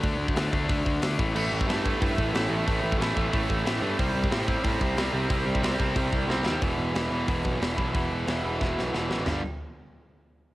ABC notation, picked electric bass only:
X:1
M:4/4
L:1/8
Q:1/4=182
K:Em
V:1 name="Picked electric bass" clef=bass
D,, D,, D,, D,, D,, D,, D,, A,,, | A,,, A,,, G,,2 G,, A,,, A,,, A,,, | A,,, A,,, A,,, A,,, A,,, A,,, A,,, G,, | C,, C,, A,,2 A,, C,, C,, C,, |
C,, C,, C,, C,, C,, C,, C,, _E,, | E,,, E,,, E,,, E,,, E,,, B,,, E,,, B,,, | E,,, E,,, E,,, E,,, E,,, B,,, E,,, A,,, | G,,, z6 z |]